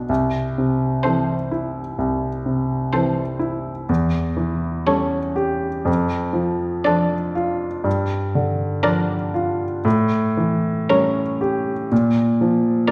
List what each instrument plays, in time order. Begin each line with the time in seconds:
Already playing: grand piano B1 B2 D4
0.09 grand piano C2
0.58 grand piano C3
1.03 cello E3, grand piano C4, violin A4 C5
1.51 grand piano E4
1.98 grand piano C2
2.46 grand piano C3
2.93 cello E3, grand piano C4, violin A4 C5
3.39 grand piano E4
3.89 grand piano E2
4.37 grand piano E3
4.86 cello G3, grand piano C#4, violin A4 C#5
5.36 grand piano G4
5.85 grand piano F2
6.33 grand piano F3
6.84 cello F3, grand piano D4, violin A4 D5
7.35 grand piano F4
7.84 grand piano G2
8.35 grand piano D3
8.83 cello F3, grand piano D4, violin A#4 D5
9.34 grand piano F4
9.85 grand piano A2
10.37 grand piano E3
10.90 cello G3, grand piano C#4, violin A#4 C#5
11.41 grand piano G4
11.92 grand piano A#2
12.41 grand piano F3
12.87 cello F3, grand piano D4, violin A#4 D5